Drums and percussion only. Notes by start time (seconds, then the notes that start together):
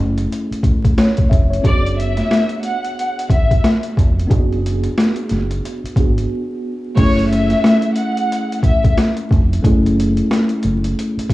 0.18 closed hi-hat
0.32 closed hi-hat
0.52 closed hi-hat
0.63 kick, closed hi-hat
0.84 kick, closed hi-hat
0.98 cross-stick, snare, closed hi-hat
1.17 kick, closed hi-hat
1.31 kick, closed hi-hat
1.53 closed hi-hat
1.64 kick, closed hi-hat
1.86 closed hi-hat
2.00 closed hi-hat
2.17 snare, closed hi-hat
2.31 cross-stick, snare, closed hi-hat
2.49 closed hi-hat
2.63 closed hi-hat
2.84 closed hi-hat
2.99 closed hi-hat
3.19 closed hi-hat
3.30 kick, closed hi-hat
3.51 kick, closed hi-hat
3.64 cross-stick, snare, closed hi-hat
3.83 closed hi-hat
3.97 kick, closed hi-hat
4.20 closed hi-hat
4.31 kick, closed hi-hat
4.53 closed hi-hat
4.66 closed hi-hat
4.84 closed hi-hat
4.98 cross-stick, snare, closed hi-hat
5.16 closed hi-hat
5.29 snare, closed hi-hat
5.51 closed hi-hat
5.66 closed hi-hat
5.86 closed hi-hat
5.96 kick, closed hi-hat
6.18 closed hi-hat
6.97 kick, closed hi-hat, crash
7.19 closed hi-hat
7.33 closed hi-hat
7.50 snare, closed hi-hat
7.64 cross-stick, snare, closed hi-hat
7.82 closed hi-hat
7.96 closed hi-hat
8.17 closed hi-hat
8.32 closed hi-hat
8.52 closed hi-hat
8.63 kick, closed hi-hat
8.84 kick, closed hi-hat
8.98 cross-stick, snare, closed hi-hat
9.17 closed hi-hat
9.31 kick, closed hi-hat
9.53 closed hi-hat
9.64 kick, closed hi-hat
9.86 closed hi-hat
10.00 closed hi-hat
10.17 closed hi-hat
10.31 cross-stick, snare, closed hi-hat
10.49 closed hi-hat
10.63 closed hi-hat
10.84 closed hi-hat
10.99 closed hi-hat
11.19 closed hi-hat
11.30 kick, closed hi-hat